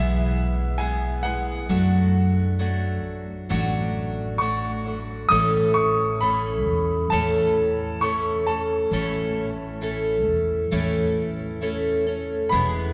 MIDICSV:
0, 0, Header, 1, 4, 480
1, 0, Start_track
1, 0, Tempo, 902256
1, 903, Time_signature, 4, 2, 24, 8
1, 6880, End_track
2, 0, Start_track
2, 0, Title_t, "Upright piano"
2, 0, Program_c, 0, 0
2, 0, Note_on_c, 0, 76, 80
2, 415, Note_on_c, 0, 80, 74
2, 435, Note_off_c, 0, 76, 0
2, 653, Note_on_c, 0, 78, 77
2, 666, Note_off_c, 0, 80, 0
2, 1598, Note_off_c, 0, 78, 0
2, 2332, Note_on_c, 0, 85, 83
2, 2812, Note_on_c, 0, 87, 94
2, 2833, Note_off_c, 0, 85, 0
2, 3054, Note_on_c, 0, 85, 79
2, 3066, Note_off_c, 0, 87, 0
2, 3302, Note_on_c, 0, 83, 79
2, 3307, Note_off_c, 0, 85, 0
2, 3762, Note_off_c, 0, 83, 0
2, 3777, Note_on_c, 0, 81, 82
2, 4262, Note_on_c, 0, 85, 82
2, 4276, Note_off_c, 0, 81, 0
2, 4504, Note_on_c, 0, 81, 67
2, 4511, Note_off_c, 0, 85, 0
2, 5442, Note_off_c, 0, 81, 0
2, 6647, Note_on_c, 0, 83, 85
2, 6880, Note_off_c, 0, 83, 0
2, 6880, End_track
3, 0, Start_track
3, 0, Title_t, "Twelve-string acoustic guitar"
3, 0, Program_c, 1, 25
3, 0, Note_on_c, 1, 40, 64
3, 0, Note_on_c, 1, 47, 60
3, 0, Note_on_c, 1, 52, 69
3, 0, Note_on_c, 1, 56, 76
3, 0, Note_on_c, 1, 59, 65
3, 0, Note_on_c, 1, 68, 74
3, 409, Note_off_c, 1, 52, 0
3, 414, Note_off_c, 1, 56, 0
3, 416, Note_on_c, 1, 52, 47
3, 417, Note_off_c, 1, 59, 0
3, 419, Note_off_c, 1, 40, 0
3, 419, Note_off_c, 1, 68, 0
3, 421, Note_off_c, 1, 47, 0
3, 421, Note_on_c, 1, 56, 49
3, 423, Note_on_c, 1, 59, 55
3, 426, Note_on_c, 1, 68, 60
3, 653, Note_off_c, 1, 68, 0
3, 656, Note_off_c, 1, 59, 0
3, 660, Note_off_c, 1, 52, 0
3, 660, Note_off_c, 1, 56, 0
3, 660, Note_on_c, 1, 68, 38
3, 662, Note_on_c, 1, 59, 42
3, 666, Note_on_c, 1, 56, 40
3, 670, Note_on_c, 1, 52, 28
3, 897, Note_off_c, 1, 52, 0
3, 899, Note_on_c, 1, 54, 65
3, 900, Note_off_c, 1, 56, 0
3, 902, Note_off_c, 1, 68, 0
3, 902, Note_on_c, 1, 57, 70
3, 903, Note_off_c, 1, 59, 0
3, 905, Note_on_c, 1, 62, 67
3, 906, Note_on_c, 1, 66, 71
3, 1371, Note_off_c, 1, 54, 0
3, 1378, Note_off_c, 1, 57, 0
3, 1378, Note_off_c, 1, 62, 0
3, 1378, Note_on_c, 1, 54, 61
3, 1380, Note_on_c, 1, 57, 63
3, 1382, Note_off_c, 1, 66, 0
3, 1385, Note_on_c, 1, 62, 59
3, 1388, Note_on_c, 1, 66, 55
3, 1851, Note_off_c, 1, 54, 0
3, 1857, Note_off_c, 1, 62, 0
3, 1858, Note_on_c, 1, 54, 68
3, 1860, Note_off_c, 1, 57, 0
3, 1860, Note_off_c, 1, 66, 0
3, 1862, Note_on_c, 1, 57, 76
3, 1863, Note_on_c, 1, 62, 78
3, 1867, Note_on_c, 1, 66, 86
3, 2334, Note_off_c, 1, 54, 0
3, 2341, Note_off_c, 1, 62, 0
3, 2341, Note_on_c, 1, 54, 49
3, 2342, Note_off_c, 1, 57, 0
3, 2343, Note_off_c, 1, 66, 0
3, 2344, Note_on_c, 1, 57, 56
3, 2348, Note_on_c, 1, 62, 62
3, 2350, Note_on_c, 1, 66, 66
3, 2577, Note_off_c, 1, 66, 0
3, 2581, Note_off_c, 1, 62, 0
3, 2583, Note_off_c, 1, 54, 0
3, 2584, Note_on_c, 1, 66, 36
3, 2585, Note_off_c, 1, 57, 0
3, 2587, Note_on_c, 1, 62, 31
3, 2593, Note_on_c, 1, 57, 35
3, 2818, Note_off_c, 1, 57, 0
3, 2820, Note_on_c, 1, 45, 65
3, 2822, Note_on_c, 1, 52, 71
3, 2824, Note_off_c, 1, 62, 0
3, 2824, Note_off_c, 1, 66, 0
3, 2824, Note_on_c, 1, 57, 68
3, 2826, Note_on_c, 1, 61, 69
3, 2828, Note_on_c, 1, 69, 85
3, 3302, Note_off_c, 1, 57, 0
3, 3303, Note_off_c, 1, 45, 0
3, 3303, Note_off_c, 1, 52, 0
3, 3305, Note_on_c, 1, 52, 50
3, 3306, Note_off_c, 1, 61, 0
3, 3307, Note_off_c, 1, 69, 0
3, 3308, Note_on_c, 1, 57, 62
3, 3311, Note_on_c, 1, 61, 53
3, 3314, Note_on_c, 1, 69, 54
3, 3783, Note_off_c, 1, 57, 0
3, 3784, Note_off_c, 1, 52, 0
3, 3785, Note_off_c, 1, 61, 0
3, 3786, Note_on_c, 1, 45, 60
3, 3786, Note_on_c, 1, 52, 65
3, 3787, Note_off_c, 1, 69, 0
3, 3789, Note_on_c, 1, 57, 64
3, 3792, Note_on_c, 1, 61, 81
3, 3794, Note_on_c, 1, 69, 75
3, 4261, Note_off_c, 1, 57, 0
3, 4262, Note_off_c, 1, 52, 0
3, 4264, Note_on_c, 1, 52, 55
3, 4266, Note_off_c, 1, 45, 0
3, 4266, Note_off_c, 1, 61, 0
3, 4267, Note_on_c, 1, 57, 55
3, 4268, Note_off_c, 1, 69, 0
3, 4272, Note_on_c, 1, 61, 57
3, 4274, Note_on_c, 1, 69, 56
3, 4499, Note_off_c, 1, 69, 0
3, 4505, Note_off_c, 1, 52, 0
3, 4506, Note_off_c, 1, 57, 0
3, 4506, Note_off_c, 1, 61, 0
3, 4506, Note_on_c, 1, 69, 36
3, 4512, Note_on_c, 1, 61, 37
3, 4517, Note_on_c, 1, 57, 33
3, 4744, Note_off_c, 1, 61, 0
3, 4745, Note_off_c, 1, 57, 0
3, 4745, Note_off_c, 1, 69, 0
3, 4747, Note_on_c, 1, 45, 71
3, 4750, Note_on_c, 1, 52, 70
3, 4751, Note_on_c, 1, 61, 80
3, 4752, Note_on_c, 1, 57, 74
3, 4753, Note_on_c, 1, 69, 78
3, 5217, Note_off_c, 1, 57, 0
3, 5218, Note_off_c, 1, 52, 0
3, 5220, Note_off_c, 1, 61, 0
3, 5220, Note_on_c, 1, 52, 59
3, 5223, Note_off_c, 1, 69, 0
3, 5224, Note_on_c, 1, 57, 63
3, 5226, Note_off_c, 1, 45, 0
3, 5226, Note_on_c, 1, 61, 62
3, 5230, Note_on_c, 1, 69, 74
3, 5696, Note_off_c, 1, 57, 0
3, 5699, Note_off_c, 1, 52, 0
3, 5699, Note_off_c, 1, 69, 0
3, 5699, Note_on_c, 1, 45, 69
3, 5700, Note_off_c, 1, 61, 0
3, 5701, Note_on_c, 1, 52, 73
3, 5703, Note_on_c, 1, 57, 87
3, 5705, Note_on_c, 1, 69, 83
3, 5706, Note_on_c, 1, 61, 69
3, 6170, Note_off_c, 1, 52, 0
3, 6174, Note_off_c, 1, 57, 0
3, 6176, Note_on_c, 1, 52, 55
3, 6177, Note_off_c, 1, 61, 0
3, 6180, Note_on_c, 1, 57, 58
3, 6181, Note_off_c, 1, 45, 0
3, 6181, Note_off_c, 1, 69, 0
3, 6183, Note_on_c, 1, 61, 68
3, 6188, Note_on_c, 1, 69, 63
3, 6413, Note_off_c, 1, 69, 0
3, 6419, Note_off_c, 1, 61, 0
3, 6420, Note_off_c, 1, 52, 0
3, 6420, Note_on_c, 1, 69, 49
3, 6422, Note_off_c, 1, 57, 0
3, 6426, Note_on_c, 1, 61, 40
3, 6430, Note_on_c, 1, 57, 30
3, 6656, Note_on_c, 1, 40, 57
3, 6659, Note_on_c, 1, 47, 65
3, 6660, Note_off_c, 1, 57, 0
3, 6660, Note_on_c, 1, 52, 69
3, 6661, Note_off_c, 1, 61, 0
3, 6661, Note_off_c, 1, 69, 0
3, 6662, Note_on_c, 1, 56, 71
3, 6663, Note_on_c, 1, 59, 78
3, 6664, Note_on_c, 1, 68, 66
3, 6880, Note_off_c, 1, 40, 0
3, 6880, Note_off_c, 1, 47, 0
3, 6880, Note_off_c, 1, 52, 0
3, 6880, Note_off_c, 1, 56, 0
3, 6880, Note_off_c, 1, 59, 0
3, 6880, Note_off_c, 1, 68, 0
3, 6880, End_track
4, 0, Start_track
4, 0, Title_t, "Upright bass"
4, 0, Program_c, 2, 32
4, 0, Note_on_c, 2, 35, 75
4, 881, Note_off_c, 2, 35, 0
4, 901, Note_on_c, 2, 42, 85
4, 1624, Note_off_c, 2, 42, 0
4, 1624, Note_on_c, 2, 33, 90
4, 1852, Note_off_c, 2, 33, 0
4, 1863, Note_on_c, 2, 33, 86
4, 2803, Note_off_c, 2, 33, 0
4, 2822, Note_on_c, 2, 33, 85
4, 3543, Note_off_c, 2, 33, 0
4, 3543, Note_on_c, 2, 40, 86
4, 3772, Note_off_c, 2, 40, 0
4, 3786, Note_on_c, 2, 40, 80
4, 4724, Note_off_c, 2, 40, 0
4, 4741, Note_on_c, 2, 33, 77
4, 5465, Note_off_c, 2, 33, 0
4, 5465, Note_on_c, 2, 40, 84
4, 5693, Note_off_c, 2, 40, 0
4, 5703, Note_on_c, 2, 40, 83
4, 6641, Note_off_c, 2, 40, 0
4, 6662, Note_on_c, 2, 28, 88
4, 6880, Note_off_c, 2, 28, 0
4, 6880, End_track
0, 0, End_of_file